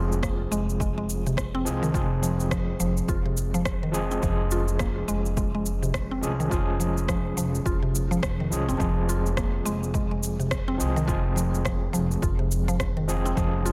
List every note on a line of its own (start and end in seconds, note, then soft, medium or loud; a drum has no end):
0.00 0.47 F1 loud
0.00 1.62 F3 medium
0.00 1.62 G#3 medium
0.00 1.63 C4 medium
0.00 0.22 F4 medium
0.00 1.64 G#4 medium
0.12 shaker soft
0.23 0.50 A#3 medium
0.23 kick loud
0.23 cross-stick medium
0.23 shaker soft
0.51 1.61 F1 medium
0.51 0.79 G#3 loud
0.51 shaker medium
0.69 shaker soft
0.80 0.96 G#3 medium
0.80 kick medium
0.80 shaker soft
0.98 1.08 G#3 medium
1.09 shaker medium
1.27 1.37 C3 medium
1.27 shaker soft
1.37 kick medium
1.37 cross-stick loud
1.37 shaker soft
1.55 1.65 C4 loud
1.65 1.89 C2 medium
1.65 1.91 F3 medium
1.65 1.91 G#3 medium
1.65 1.92 C4 medium
1.65 1.92 G#4 medium
1.65 shaker medium
1.83 1.89 D#3 medium
1.83 shaker soft
1.93 2.75 F1 medium
1.93 3.91 F3 medium
1.93 3.91 G#3 medium
1.93 3.92 C4 medium
1.93 2.22 F4 medium
1.93 3.93 G#4 medium
1.93 kick loud
1.93 shaker soft
2.23 2.50 F3 medium
2.23 shaker medium
2.40 shaker soft
2.51 2.68 F3 medium
2.51 kick loud
2.51 cross-stick medium
2.51 shaker soft
2.80 3.03 F1 medium
2.80 3.07 F3 medium
2.80 shaker medium
2.97 shaker soft
3.08 4.18 F1 medium
3.08 3.24 F4 medium
3.08 kick loud
3.08 shaker soft
3.26 3.36 C3 medium
3.37 shaker medium
3.54 3.81 F3 medium
3.54 shaker soft
3.65 kick loud
3.65 cross-stick loud
3.65 shaker soft
3.83 3.94 D#3 medium
3.92 4.19 F3 medium
3.92 4.19 G#3 medium
3.92 4.20 C4 medium
3.92 4.20 G#4 loud
3.92 shaker medium
4.11 4.22 C4 medium
4.11 shaker soft
4.21 5.04 F1 loud
4.21 6.19 F3 medium
4.21 4.50 F3 medium
4.21 6.20 G#3 medium
4.21 6.20 C#4 medium
4.21 kick loud
4.21 shaker soft
4.25 6.21 G#4 medium
4.51 4.79 F4 medium
4.51 shaker medium
4.68 shaker soft
4.79 5.07 A#3 medium
4.79 kick loud
4.79 cross-stick medium
4.79 shaker soft
5.08 6.18 F1 medium
5.08 5.36 G#3 loud
5.08 shaker medium
5.26 shaker soft
5.37 5.52 G#3 medium
5.37 kick loud
5.37 shaker soft
5.55 5.65 G#3 medium
5.66 shaker medium
5.83 5.94 C3 medium
5.83 shaker soft
5.94 kick loud
5.94 cross-stick loud
5.94 shaker soft
6.11 6.22 C4 medium
6.21 6.46 C2 medium
6.21 6.48 F3 medium
6.21 6.48 G#3 medium
6.21 6.49 C#4 medium
6.21 6.49 G#4 loud
6.21 shaker medium
6.40 6.46 D#3 medium
6.40 shaker soft
6.50 7.33 F1 medium
6.50 8.48 F3 medium
6.50 8.48 G#3 medium
6.50 8.49 C#4 medium
6.50 6.79 F4 medium
6.50 8.50 G#4 medium
6.50 kick loud
6.50 shaker soft
6.80 7.07 F3 medium
6.80 shaker medium
6.97 shaker soft
7.08 7.25 F3 medium
7.08 kick loud
7.08 cross-stick medium
7.08 shaker soft
7.37 7.60 F1 medium
7.37 7.65 F3 medium
7.37 shaker medium
7.55 shaker soft
7.66 8.22 F1 medium
7.66 7.81 F4 medium
7.66 kick loud
7.66 shaker soft
7.83 7.94 C3 medium
7.95 shaker medium
8.11 8.38 F3 loud
8.11 shaker soft
8.23 8.46 F1 medium
8.23 kick loud
8.23 cross-stick loud
8.23 shaker soft
8.40 8.51 D#3 medium
8.51 8.64 C2 medium
8.51 8.76 F3 medium
8.51 8.77 G#3 medium
8.51 8.77 C#4 medium
8.51 8.78 G#4 medium
8.51 shaker medium
8.69 8.77 F1 medium
8.69 8.79 C4 medium
8.69 shaker soft
8.78 9.61 F1 medium
8.78 10.76 F3 medium
8.78 9.08 F3 medium
8.78 10.77 G#3 medium
8.78 10.78 C4 medium
8.78 kick loud
8.78 shaker soft
8.82 10.78 G#4 medium
9.09 9.36 F4 medium
9.09 shaker medium
9.26 shaker soft
9.37 9.65 A#3 medium
9.37 kick loud
9.37 cross-stick medium
9.37 shaker soft
9.65 10.76 F1 medium
9.65 9.93 G#3 loud
9.65 shaker medium
9.83 shaker soft
9.94 10.09 G#3 medium
9.94 kick loud
9.94 shaker soft
10.11 10.22 G#3 medium
10.23 shaker medium
10.40 10.51 C3 medium
10.40 shaker soft
10.51 kick medium
10.51 cross-stick loud
10.51 shaker soft
10.68 10.79 C4 loud
10.78 11.03 C2 medium
10.78 11.05 F3 medium
10.78 11.05 G#3 medium
10.78 11.06 C4 medium
10.78 11.06 G#4 loud
10.78 shaker medium
10.96 11.03 D#3 medium
10.96 shaker soft
11.06 11.90 F1 loud
11.06 13.05 F3 medium
11.06 13.05 G#3 medium
11.06 13.06 C4 medium
11.06 11.35 F4 medium
11.06 13.07 G#4 medium
11.06 kick loud
11.06 shaker soft
11.36 11.64 F3 medium
11.36 shaker medium
11.54 shaker soft
11.65 11.81 F3 medium
11.65 kick loud
11.65 cross-stick medium
11.65 shaker soft
11.93 12.17 F1 medium
11.93 12.21 F3 loud
11.93 shaker medium
12.11 shaker soft
12.22 13.33 F1 medium
12.22 12.38 F4 medium
12.22 kick loud
12.22 shaker soft
12.39 12.50 C3 medium
12.51 shaker medium
12.68 12.95 F3 loud
12.68 shaker soft
12.80 kick medium
12.80 cross-stick medium
12.80 shaker soft
12.97 13.08 D#3 medium
13.08 13.34 F3 medium
13.08 13.34 G#3 medium
13.08 13.35 C4 medium
13.08 13.35 G#4 loud
13.08 shaker medium
13.25 13.36 C4 medium
13.25 shaker soft
13.35 13.72 F1 loud
13.35 13.72 F3 medium
13.35 13.64 F3 medium
13.35 13.72 G#3 medium
13.35 13.72 C#4 medium
13.35 kick loud
13.35 shaker soft
13.39 13.72 G#4 medium
13.66 13.72 F4 medium
13.66 shaker medium